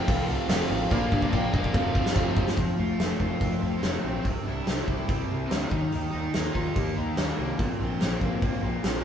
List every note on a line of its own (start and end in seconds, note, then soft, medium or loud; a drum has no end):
0.00 0.28 F2 medium
0.00 0.89 F2 medium
0.00 0.90 C3 medium
0.00 0.92 F3 loud
0.00 0.90 A3 medium
0.00 0.90 F4 medium
0.00 0.90 C5 medium
0.00 0.33 G5 loud
0.05 0.36 C2 medium
0.05 0.26 F2 medium
0.05 0.46 C3 medium
0.05 0.28 F3 medium
0.05 0.26 A3 medium
0.05 0.25 C4 loud
0.05 0.41 F4 medium
0.05 0.41 A4 medium
0.05 0.41 C5 medium
0.05 0.41 F5 medium
0.05 kick loud
0.05 open hi-hat medium
0.26 0.47 F2 medium
0.26 0.46 C3 medium
0.26 0.48 F3 medium
0.26 0.48 A3 medium
0.26 0.48 C4 medium
0.26 tambourine medium
0.33 0.46 F5 loud
0.47 0.63 F1 medium
0.47 0.88 F2 loud
0.47 0.89 C3 medium
0.47 0.69 F3 loud
0.47 0.68 A3 loud
0.47 0.66 C4 loud
0.47 0.83 F4 medium
0.47 0.83 A4 medium
0.47 0.83 C5 medium
0.47 0.83 F5 medium
0.47 snare loud
0.47 open hi-hat medium
0.47 tambourine medium
0.52 0.92 F5 medium
0.68 0.84 A1 medium
0.68 0.88 F2 medium
0.68 0.89 C3 loud
0.68 0.91 F3 medium
0.68 0.89 A3 medium
0.68 0.88 C4 medium
0.72 tambourine medium
0.90 1.05 A#1 loud
0.90 1.30 A#2 medium
0.90 1.73 A#2 medium
0.90 1.12 F3 medium
0.90 1.74 F3 medium
0.90 1.11 A#3 loud
0.90 1.74 A#3 loud
0.90 1.75 A#3 medium
0.90 1.09 D4 loud
0.90 1.24 F4 medium
0.90 1.75 F4 medium
0.90 1.24 A#4 medium
0.90 1.24 D5 medium
0.90 1.74 D5 medium
0.90 1.25 F5 medium
0.90 1.34 F5 loud
0.90 kick loud
0.90 tambourine medium
1.09 1.26 G2 loud
1.09 1.30 A#2 medium
1.09 1.30 F3 medium
1.09 1.31 A#3 medium
1.09 1.32 D4 medium
1.09 kick medium
1.09 tambourine soft
1.22 kick medium
1.31 1.47 A#1 medium
1.31 1.52 A#2 medium
1.31 1.52 F3 medium
1.31 1.51 A#3 medium
1.31 1.51 D4 loud
1.31 1.65 F4 medium
1.31 1.66 A#4 medium
1.31 1.66 D5 medium
1.31 1.66 F5 medium
1.31 1.53 G5 loud
1.31 kick medium
1.31 tambourine medium
1.52 1.67 E1 medium
1.52 1.73 A#2 medium
1.52 1.73 F3 medium
1.52 1.72 A#3 medium
1.52 1.72 D4 loud
1.52 2.34 F5 medium
1.52 kick medium
1.64 kick medium
1.73 2.02 F1 medium
1.73 2.14 F2 medium
1.73 2.57 F2 medium
1.73 2.15 C3 loud
1.73 2.57 C3 medium
1.73 1.95 F3 medium
1.73 2.55 A3 medium
1.73 1.94 A3 medium
1.73 1.93 C4 loud
1.73 2.07 G4 medium
1.73 2.57 G4 medium
1.73 2.07 A4 medium
1.73 2.07 C5 medium
1.73 2.08 F5 medium
1.73 2.57 F5 medium
1.73 kick loud
1.73 tambourine soft
1.77 2.58 F3 loud
1.93 2.14 F2 medium
1.93 2.14 C3 medium
1.93 2.16 F3 medium
1.93 2.15 A3 medium
1.93 2.16 C4 medium
1.93 kick medium
1.93 tambourine medium
2.06 snare medium
2.14 2.30 F1 medium
2.14 2.56 F2 medium
2.14 2.56 C3 medium
2.14 2.38 F3 medium
2.14 2.36 A3 loud
2.14 2.36 C4 medium
2.14 2.35 C4 loud
2.14 2.48 G4 medium
2.14 2.48 A4 medium
2.14 2.48 C5 medium
2.14 2.49 F5 medium
2.14 kick loud
2.14 tambourine loud
2.36 2.50 F1 medium
2.36 2.56 F2 loud
2.36 2.56 C3 loud
2.36 2.56 F3 medium
2.36 2.57 A3 medium
2.36 2.56 A#3 medium
2.36 2.56 C4 medium
2.36 kick medium
2.36 tambourine medium
2.48 snare medium
2.55 2.71 F1 medium
2.55 3.39 F3 medium
2.55 4.22 A3 medium
2.55 2.76 C4 medium
2.55 4.22 F4 medium
2.55 4.22 C5 medium
2.55 kick loud
2.55 open hi-hat soft
2.60 3.60 F3 medium
2.78 2.91 F1 medium
2.78 3.18 A3 medium
2.78 3.82 A3 medium
2.78 3.19 F4 medium
2.99 3.12 F1 medium
2.99 3.41 C4 medium
2.99 4.04 F4 medium
2.99 snare medium
2.99 open hi-hat soft
3.19 3.33 F1 medium
3.19 3.38 A3 medium
3.19 3.61 C4 medium
3.19 4.25 F4 medium
3.19 kick medium
3.39 3.54 F1 medium
3.39 4.24 F3 medium
3.39 3.78 A3 medium
3.39 4.05 C4 medium
3.39 kick medium
3.39 open hi-hat soft
3.61 3.75 F1 medium
3.61 4.24 F3 medium
3.61 4.03 C4 medium
3.78 4.00 C4 medium
3.83 3.96 F1 medium
3.83 4.25 A3 medium
3.83 snare loud
3.83 open hi-hat soft
4.01 4.17 A#1 medium
4.01 4.19 C4 medium
4.01 4.25 C4 medium
4.06 4.26 C4 medium
4.20 5.68 G3 medium
4.20 4.44 C4 medium
4.20 5.68 E4 medium
4.20 5.68 C5 medium
4.25 4.38 C2 medium
4.25 5.08 C3 medium
4.25 5.30 C3 medium
4.25 kick medium
4.25 open hi-hat soft
4.42 4.82 D4 medium
4.47 4.60 C2 medium
4.47 5.49 G3 medium
4.47 4.88 E4 medium
4.67 4.81 C2 medium
4.67 5.08 C4 soft
4.67 5.71 E4 medium
4.67 snare medium
4.67 open hi-hat soft
4.83 5.24 E4 medium
4.88 5.01 C2 medium
4.88 5.29 C4 medium
4.88 5.72 E4 medium
4.88 kick medium
5.08 5.22 C2 medium
5.08 5.70 C3 medium
5.08 5.71 C4 medium
5.08 kick loud
5.08 open hi-hat soft
5.30 5.44 C2 medium
5.30 5.72 C3 medium
5.30 5.71 C4 medium
5.47 5.71 G3 medium
5.47 5.70 C4 medium
5.47 open hi-hat soft
5.51 5.64 D2 medium
5.51 5.72 G3 medium
5.51 snare loud
5.68 5.84 D#2 medium
5.68 5.91 D#3 medium
5.68 6.10 D#4 medium
5.68 kick medium
5.73 7.58 D#3 medium
5.73 5.92 D#3 medium
5.73 7.58 G3 medium
5.73 7.57 A#4 medium
5.92 6.06 D#2 medium
5.92 6.76 D#3 medium
5.92 6.95 D#3 medium
5.92 open hi-hat soft
6.11 6.27 D#2 medium
6.11 7.16 G3 medium
6.11 6.52 D#4 medium
6.11 6.53 D#4 medium
6.34 6.48 D#2 medium
6.34 6.76 A#3 soft
6.34 7.38 D#4 medium
6.34 snare medium
6.34 open hi-hat soft
6.52 6.68 D#2 medium
6.52 7.58 D#4 medium
6.52 6.72 F4 medium
6.52 kick medium
6.57 6.95 A#3 medium
6.74 6.89 D#2 medium
6.74 7.58 D#3 medium
6.74 7.37 A#3 medium
6.74 6.96 G4 medium
6.74 kick medium
6.74 open hi-hat soft
6.94 7.10 D#2 medium
6.94 7.58 D#3 medium
6.94 7.37 A#3 medium
6.94 7.14 D#4 medium
7.16 7.31 D#2 medium
7.16 7.59 G3 medium
7.16 7.59 D4 medium
7.16 snare medium
7.16 open hi-hat soft
7.39 7.52 C2 medium
7.39 7.59 A#3 medium
7.58 7.72 A#1 medium
7.58 8.40 A#2 medium
7.58 8.62 A#2 medium
7.58 9.04 F3 medium
7.58 9.04 C4 medium
7.58 8.38 C4 medium
7.58 9.04 A#4 medium
7.58 kick loud
7.58 open hi-hat soft
7.79 7.93 A#1 medium
7.79 8.81 F3 medium
7.79 8.21 C4 medium
8.01 8.14 A#1 medium
8.01 8.41 A#3 medium
8.01 9.04 C4 medium
8.01 snare medium
8.01 open hi-hat soft
8.21 8.34 A#1 medium
8.21 8.60 A#3 medium
8.21 9.04 C4 medium
8.21 kick medium
8.41 8.55 A#1 medium
8.41 9.04 A#2 medium
8.41 9.03 A#3 soft
8.41 kick medium
8.41 open hi-hat soft
8.61 8.76 A#1 medium
8.61 9.04 A#2 medium
8.61 9.04 A#3 medium
8.83 9.04 A#1 medium
8.83 9.04 F3 medium
8.83 8.92 C4 medium
8.83 snare medium
8.83 open hi-hat soft